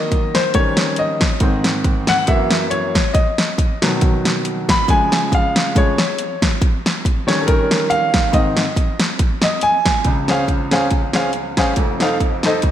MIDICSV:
0, 0, Header, 1, 3, 480
1, 0, Start_track
1, 0, Key_signature, -5, "major"
1, 0, Tempo, 431655
1, 1576, Time_signature, 4, 2, 24, 8
1, 14137, End_track
2, 0, Start_track
2, 0, Title_t, "Grand piano"
2, 0, Program_c, 0, 0
2, 0, Note_on_c, 0, 51, 53
2, 0, Note_on_c, 0, 54, 45
2, 0, Note_on_c, 0, 58, 62
2, 0, Note_on_c, 0, 75, 102
2, 388, Note_on_c, 0, 72, 90
2, 421, Note_off_c, 0, 75, 0
2, 562, Note_off_c, 0, 51, 0
2, 568, Note_off_c, 0, 54, 0
2, 571, Note_off_c, 0, 58, 0
2, 601, Note_on_c, 0, 51, 56
2, 606, Note_on_c, 0, 55, 52
2, 609, Note_on_c, 0, 73, 94
2, 614, Note_on_c, 0, 61, 60
2, 615, Note_off_c, 0, 72, 0
2, 1100, Note_on_c, 0, 75, 83
2, 1107, Note_off_c, 0, 73, 0
2, 1316, Note_off_c, 0, 51, 0
2, 1319, Note_off_c, 0, 55, 0
2, 1323, Note_off_c, 0, 61, 0
2, 1574, Note_on_c, 0, 44, 51
2, 1575, Note_on_c, 0, 51, 47
2, 1587, Note_on_c, 0, 60, 58
2, 1800, Note_off_c, 0, 75, 0
2, 2321, Note_on_c, 0, 78, 100
2, 2492, Note_off_c, 0, 44, 0
2, 2493, Note_off_c, 0, 51, 0
2, 2499, Note_off_c, 0, 60, 0
2, 2533, Note_on_c, 0, 42, 53
2, 2539, Note_on_c, 0, 76, 85
2, 2543, Note_off_c, 0, 78, 0
2, 2545, Note_on_c, 0, 52, 45
2, 2549, Note_on_c, 0, 58, 57
2, 3008, Note_on_c, 0, 73, 74
2, 3034, Note_off_c, 0, 76, 0
2, 3245, Note_off_c, 0, 42, 0
2, 3251, Note_off_c, 0, 52, 0
2, 3253, Note_off_c, 0, 58, 0
2, 3488, Note_on_c, 0, 75, 77
2, 3509, Note_off_c, 0, 73, 0
2, 4196, Note_off_c, 0, 75, 0
2, 4246, Note_on_c, 0, 47, 57
2, 4252, Note_on_c, 0, 51, 48
2, 4265, Note_on_c, 0, 54, 59
2, 5229, Note_on_c, 0, 83, 99
2, 5379, Note_off_c, 0, 47, 0
2, 5382, Note_off_c, 0, 51, 0
2, 5389, Note_off_c, 0, 54, 0
2, 5436, Note_on_c, 0, 49, 51
2, 5440, Note_on_c, 0, 53, 52
2, 5441, Note_off_c, 0, 83, 0
2, 5444, Note_on_c, 0, 56, 62
2, 5453, Note_on_c, 0, 80, 102
2, 5933, Note_off_c, 0, 80, 0
2, 5944, Note_on_c, 0, 77, 81
2, 6373, Note_off_c, 0, 77, 0
2, 6379, Note_off_c, 0, 49, 0
2, 6379, Note_off_c, 0, 53, 0
2, 6389, Note_off_c, 0, 56, 0
2, 6396, Note_on_c, 0, 49, 49
2, 6396, Note_on_c, 0, 53, 45
2, 6406, Note_on_c, 0, 56, 52
2, 6424, Note_on_c, 0, 73, 74
2, 6630, Note_off_c, 0, 49, 0
2, 6630, Note_off_c, 0, 53, 0
2, 6636, Note_off_c, 0, 56, 0
2, 7106, Note_off_c, 0, 73, 0
2, 8082, Note_on_c, 0, 51, 61
2, 8091, Note_on_c, 0, 73, 82
2, 8093, Note_on_c, 0, 55, 52
2, 8102, Note_on_c, 0, 61, 61
2, 8240, Note_off_c, 0, 73, 0
2, 8241, Note_on_c, 0, 69, 57
2, 8306, Note_on_c, 0, 70, 85
2, 8308, Note_off_c, 0, 69, 0
2, 8784, Note_on_c, 0, 77, 97
2, 8799, Note_off_c, 0, 70, 0
2, 9215, Note_off_c, 0, 51, 0
2, 9220, Note_off_c, 0, 55, 0
2, 9225, Note_off_c, 0, 61, 0
2, 9253, Note_on_c, 0, 44, 53
2, 9262, Note_on_c, 0, 51, 46
2, 9270, Note_on_c, 0, 60, 61
2, 9271, Note_on_c, 0, 75, 85
2, 9278, Note_off_c, 0, 77, 0
2, 9591, Note_off_c, 0, 44, 0
2, 9595, Note_off_c, 0, 51, 0
2, 9600, Note_off_c, 0, 60, 0
2, 9966, Note_off_c, 0, 75, 0
2, 10491, Note_on_c, 0, 75, 83
2, 10707, Note_on_c, 0, 80, 102
2, 10709, Note_off_c, 0, 75, 0
2, 11149, Note_off_c, 0, 80, 0
2, 11190, Note_on_c, 0, 37, 52
2, 11193, Note_on_c, 0, 49, 51
2, 11444, Note_on_c, 0, 61, 71
2, 11448, Note_on_c, 0, 68, 68
2, 11455, Note_on_c, 0, 72, 64
2, 11466, Note_on_c, 0, 77, 81
2, 11596, Note_off_c, 0, 61, 0
2, 11599, Note_off_c, 0, 68, 0
2, 11602, Note_off_c, 0, 72, 0
2, 11607, Note_off_c, 0, 77, 0
2, 11921, Note_on_c, 0, 61, 79
2, 11924, Note_on_c, 0, 68, 75
2, 11932, Note_on_c, 0, 72, 70
2, 11934, Note_on_c, 0, 77, 87
2, 12074, Note_off_c, 0, 61, 0
2, 12076, Note_off_c, 0, 68, 0
2, 12080, Note_off_c, 0, 72, 0
2, 12081, Note_off_c, 0, 77, 0
2, 12397, Note_on_c, 0, 61, 70
2, 12401, Note_on_c, 0, 68, 66
2, 12407, Note_on_c, 0, 77, 81
2, 12408, Note_on_c, 0, 72, 65
2, 12552, Note_off_c, 0, 61, 0
2, 12553, Note_off_c, 0, 68, 0
2, 12557, Note_off_c, 0, 72, 0
2, 12557, Note_off_c, 0, 77, 0
2, 12872, Note_on_c, 0, 61, 75
2, 12874, Note_on_c, 0, 68, 67
2, 12880, Note_on_c, 0, 72, 70
2, 12891, Note_on_c, 0, 77, 82
2, 13028, Note_off_c, 0, 61, 0
2, 13029, Note_off_c, 0, 68, 0
2, 13032, Note_off_c, 0, 72, 0
2, 13038, Note_off_c, 0, 77, 0
2, 13054, Note_off_c, 0, 37, 0
2, 13055, Note_off_c, 0, 49, 0
2, 13089, Note_on_c, 0, 41, 65
2, 13092, Note_on_c, 0, 29, 63
2, 13350, Note_on_c, 0, 63, 72
2, 13355, Note_on_c, 0, 69, 68
2, 13362, Note_on_c, 0, 72, 65
2, 13369, Note_on_c, 0, 77, 79
2, 13506, Note_off_c, 0, 63, 0
2, 13509, Note_off_c, 0, 69, 0
2, 13513, Note_off_c, 0, 72, 0
2, 13516, Note_off_c, 0, 77, 0
2, 13840, Note_on_c, 0, 63, 78
2, 13848, Note_on_c, 0, 69, 72
2, 13852, Note_on_c, 0, 72, 69
2, 13862, Note_on_c, 0, 75, 83
2, 13991, Note_off_c, 0, 63, 0
2, 13995, Note_off_c, 0, 69, 0
2, 13997, Note_off_c, 0, 72, 0
2, 14002, Note_off_c, 0, 75, 0
2, 14137, Note_off_c, 0, 29, 0
2, 14137, Note_off_c, 0, 41, 0
2, 14137, End_track
3, 0, Start_track
3, 0, Title_t, "Drums"
3, 129, Note_on_c, 9, 36, 85
3, 130, Note_on_c, 9, 42, 79
3, 240, Note_off_c, 9, 36, 0
3, 241, Note_off_c, 9, 42, 0
3, 386, Note_on_c, 9, 38, 96
3, 388, Note_on_c, 9, 42, 74
3, 497, Note_off_c, 9, 38, 0
3, 499, Note_off_c, 9, 42, 0
3, 599, Note_on_c, 9, 42, 104
3, 609, Note_on_c, 9, 36, 102
3, 710, Note_off_c, 9, 42, 0
3, 720, Note_off_c, 9, 36, 0
3, 854, Note_on_c, 9, 38, 112
3, 858, Note_on_c, 9, 42, 63
3, 965, Note_off_c, 9, 38, 0
3, 969, Note_off_c, 9, 42, 0
3, 1072, Note_on_c, 9, 42, 73
3, 1183, Note_off_c, 9, 42, 0
3, 1342, Note_on_c, 9, 38, 112
3, 1347, Note_on_c, 9, 42, 60
3, 1348, Note_on_c, 9, 36, 88
3, 1453, Note_off_c, 9, 38, 0
3, 1458, Note_off_c, 9, 42, 0
3, 1459, Note_off_c, 9, 36, 0
3, 1559, Note_on_c, 9, 42, 89
3, 1563, Note_on_c, 9, 36, 108
3, 1670, Note_off_c, 9, 42, 0
3, 1675, Note_off_c, 9, 36, 0
3, 1827, Note_on_c, 9, 38, 91
3, 1832, Note_on_c, 9, 42, 72
3, 1938, Note_off_c, 9, 38, 0
3, 1943, Note_off_c, 9, 42, 0
3, 2051, Note_on_c, 9, 36, 88
3, 2051, Note_on_c, 9, 42, 78
3, 2162, Note_off_c, 9, 36, 0
3, 2162, Note_off_c, 9, 42, 0
3, 2305, Note_on_c, 9, 38, 105
3, 2307, Note_on_c, 9, 42, 73
3, 2416, Note_off_c, 9, 38, 0
3, 2418, Note_off_c, 9, 42, 0
3, 2526, Note_on_c, 9, 42, 103
3, 2536, Note_on_c, 9, 36, 104
3, 2637, Note_off_c, 9, 42, 0
3, 2647, Note_off_c, 9, 36, 0
3, 2786, Note_on_c, 9, 38, 106
3, 2789, Note_on_c, 9, 42, 66
3, 2897, Note_off_c, 9, 38, 0
3, 2900, Note_off_c, 9, 42, 0
3, 3015, Note_on_c, 9, 42, 76
3, 3126, Note_off_c, 9, 42, 0
3, 3281, Note_on_c, 9, 36, 82
3, 3284, Note_on_c, 9, 38, 104
3, 3289, Note_on_c, 9, 42, 59
3, 3393, Note_off_c, 9, 36, 0
3, 3395, Note_off_c, 9, 38, 0
3, 3400, Note_off_c, 9, 42, 0
3, 3497, Note_on_c, 9, 36, 107
3, 3499, Note_on_c, 9, 42, 88
3, 3609, Note_off_c, 9, 36, 0
3, 3610, Note_off_c, 9, 42, 0
3, 3762, Note_on_c, 9, 38, 97
3, 3767, Note_on_c, 9, 42, 68
3, 3873, Note_off_c, 9, 38, 0
3, 3879, Note_off_c, 9, 42, 0
3, 3984, Note_on_c, 9, 36, 95
3, 3988, Note_on_c, 9, 42, 80
3, 4095, Note_off_c, 9, 36, 0
3, 4099, Note_off_c, 9, 42, 0
3, 4250, Note_on_c, 9, 38, 109
3, 4252, Note_on_c, 9, 42, 72
3, 4361, Note_off_c, 9, 38, 0
3, 4363, Note_off_c, 9, 42, 0
3, 4463, Note_on_c, 9, 42, 99
3, 4470, Note_on_c, 9, 36, 104
3, 4574, Note_off_c, 9, 42, 0
3, 4581, Note_off_c, 9, 36, 0
3, 4730, Note_on_c, 9, 38, 97
3, 4733, Note_on_c, 9, 42, 63
3, 4841, Note_off_c, 9, 38, 0
3, 4845, Note_off_c, 9, 42, 0
3, 4949, Note_on_c, 9, 42, 73
3, 5060, Note_off_c, 9, 42, 0
3, 5212, Note_on_c, 9, 36, 86
3, 5215, Note_on_c, 9, 38, 110
3, 5220, Note_on_c, 9, 42, 59
3, 5324, Note_off_c, 9, 36, 0
3, 5326, Note_off_c, 9, 38, 0
3, 5331, Note_off_c, 9, 42, 0
3, 5430, Note_on_c, 9, 36, 108
3, 5435, Note_on_c, 9, 42, 88
3, 5541, Note_off_c, 9, 36, 0
3, 5546, Note_off_c, 9, 42, 0
3, 5695, Note_on_c, 9, 38, 104
3, 5700, Note_on_c, 9, 42, 64
3, 5806, Note_off_c, 9, 38, 0
3, 5811, Note_off_c, 9, 42, 0
3, 5917, Note_on_c, 9, 36, 89
3, 5924, Note_on_c, 9, 42, 85
3, 6028, Note_off_c, 9, 36, 0
3, 6035, Note_off_c, 9, 42, 0
3, 6182, Note_on_c, 9, 38, 105
3, 6183, Note_on_c, 9, 42, 72
3, 6293, Note_off_c, 9, 38, 0
3, 6295, Note_off_c, 9, 42, 0
3, 6404, Note_on_c, 9, 36, 117
3, 6406, Note_on_c, 9, 42, 98
3, 6515, Note_off_c, 9, 36, 0
3, 6518, Note_off_c, 9, 42, 0
3, 6654, Note_on_c, 9, 38, 103
3, 6658, Note_on_c, 9, 42, 64
3, 6765, Note_off_c, 9, 38, 0
3, 6769, Note_off_c, 9, 42, 0
3, 6877, Note_on_c, 9, 42, 75
3, 6989, Note_off_c, 9, 42, 0
3, 7141, Note_on_c, 9, 36, 83
3, 7142, Note_on_c, 9, 38, 117
3, 7147, Note_on_c, 9, 42, 64
3, 7252, Note_off_c, 9, 36, 0
3, 7254, Note_off_c, 9, 38, 0
3, 7258, Note_off_c, 9, 42, 0
3, 7357, Note_on_c, 9, 36, 116
3, 7359, Note_on_c, 9, 42, 90
3, 7468, Note_off_c, 9, 36, 0
3, 7470, Note_off_c, 9, 42, 0
3, 7628, Note_on_c, 9, 38, 101
3, 7634, Note_on_c, 9, 42, 73
3, 7740, Note_off_c, 9, 38, 0
3, 7745, Note_off_c, 9, 42, 0
3, 7840, Note_on_c, 9, 36, 85
3, 7849, Note_on_c, 9, 42, 85
3, 7952, Note_off_c, 9, 36, 0
3, 7960, Note_off_c, 9, 42, 0
3, 8101, Note_on_c, 9, 38, 108
3, 8103, Note_on_c, 9, 42, 81
3, 8212, Note_off_c, 9, 38, 0
3, 8214, Note_off_c, 9, 42, 0
3, 8316, Note_on_c, 9, 42, 101
3, 8319, Note_on_c, 9, 36, 116
3, 8427, Note_off_c, 9, 42, 0
3, 8430, Note_off_c, 9, 36, 0
3, 8574, Note_on_c, 9, 38, 107
3, 8578, Note_on_c, 9, 42, 68
3, 8686, Note_off_c, 9, 38, 0
3, 8689, Note_off_c, 9, 42, 0
3, 8791, Note_on_c, 9, 42, 75
3, 8902, Note_off_c, 9, 42, 0
3, 9049, Note_on_c, 9, 38, 107
3, 9052, Note_on_c, 9, 36, 95
3, 9054, Note_on_c, 9, 42, 61
3, 9160, Note_off_c, 9, 38, 0
3, 9163, Note_off_c, 9, 36, 0
3, 9165, Note_off_c, 9, 42, 0
3, 9266, Note_on_c, 9, 36, 106
3, 9271, Note_on_c, 9, 42, 91
3, 9377, Note_off_c, 9, 36, 0
3, 9382, Note_off_c, 9, 42, 0
3, 9525, Note_on_c, 9, 38, 99
3, 9530, Note_on_c, 9, 42, 71
3, 9636, Note_off_c, 9, 38, 0
3, 9641, Note_off_c, 9, 42, 0
3, 9746, Note_on_c, 9, 36, 90
3, 9752, Note_on_c, 9, 42, 92
3, 9857, Note_off_c, 9, 36, 0
3, 9863, Note_off_c, 9, 42, 0
3, 10003, Note_on_c, 9, 38, 106
3, 10005, Note_on_c, 9, 42, 80
3, 10114, Note_off_c, 9, 38, 0
3, 10116, Note_off_c, 9, 42, 0
3, 10222, Note_on_c, 9, 42, 103
3, 10224, Note_on_c, 9, 36, 103
3, 10333, Note_off_c, 9, 42, 0
3, 10335, Note_off_c, 9, 36, 0
3, 10471, Note_on_c, 9, 38, 110
3, 10474, Note_on_c, 9, 42, 68
3, 10582, Note_off_c, 9, 38, 0
3, 10585, Note_off_c, 9, 42, 0
3, 10691, Note_on_c, 9, 42, 81
3, 10802, Note_off_c, 9, 42, 0
3, 10959, Note_on_c, 9, 38, 114
3, 10960, Note_on_c, 9, 36, 89
3, 10964, Note_on_c, 9, 42, 64
3, 11070, Note_off_c, 9, 38, 0
3, 11071, Note_off_c, 9, 36, 0
3, 11075, Note_off_c, 9, 42, 0
3, 11170, Note_on_c, 9, 42, 73
3, 11174, Note_on_c, 9, 36, 93
3, 11281, Note_off_c, 9, 42, 0
3, 11285, Note_off_c, 9, 36, 0
3, 11433, Note_on_c, 9, 38, 87
3, 11438, Note_on_c, 9, 42, 60
3, 11544, Note_off_c, 9, 38, 0
3, 11549, Note_off_c, 9, 42, 0
3, 11655, Note_on_c, 9, 36, 74
3, 11659, Note_on_c, 9, 42, 68
3, 11766, Note_off_c, 9, 36, 0
3, 11770, Note_off_c, 9, 42, 0
3, 11914, Note_on_c, 9, 38, 88
3, 11916, Note_on_c, 9, 42, 66
3, 12025, Note_off_c, 9, 38, 0
3, 12027, Note_off_c, 9, 42, 0
3, 12127, Note_on_c, 9, 42, 85
3, 12134, Note_on_c, 9, 36, 96
3, 12238, Note_off_c, 9, 42, 0
3, 12246, Note_off_c, 9, 36, 0
3, 12381, Note_on_c, 9, 38, 93
3, 12384, Note_on_c, 9, 42, 56
3, 12492, Note_off_c, 9, 38, 0
3, 12496, Note_off_c, 9, 42, 0
3, 12598, Note_on_c, 9, 42, 65
3, 12709, Note_off_c, 9, 42, 0
3, 12867, Note_on_c, 9, 38, 98
3, 12870, Note_on_c, 9, 36, 82
3, 12872, Note_on_c, 9, 42, 53
3, 12978, Note_off_c, 9, 38, 0
3, 12981, Note_off_c, 9, 36, 0
3, 12983, Note_off_c, 9, 42, 0
3, 13079, Note_on_c, 9, 42, 76
3, 13085, Note_on_c, 9, 36, 100
3, 13190, Note_off_c, 9, 42, 0
3, 13196, Note_off_c, 9, 36, 0
3, 13345, Note_on_c, 9, 38, 83
3, 13350, Note_on_c, 9, 42, 59
3, 13457, Note_off_c, 9, 38, 0
3, 13462, Note_off_c, 9, 42, 0
3, 13570, Note_on_c, 9, 36, 81
3, 13572, Note_on_c, 9, 42, 75
3, 13681, Note_off_c, 9, 36, 0
3, 13683, Note_off_c, 9, 42, 0
3, 13824, Note_on_c, 9, 38, 101
3, 13826, Note_on_c, 9, 42, 63
3, 13936, Note_off_c, 9, 38, 0
3, 13938, Note_off_c, 9, 42, 0
3, 14036, Note_on_c, 9, 42, 90
3, 14049, Note_on_c, 9, 36, 100
3, 14137, Note_off_c, 9, 36, 0
3, 14137, Note_off_c, 9, 42, 0
3, 14137, End_track
0, 0, End_of_file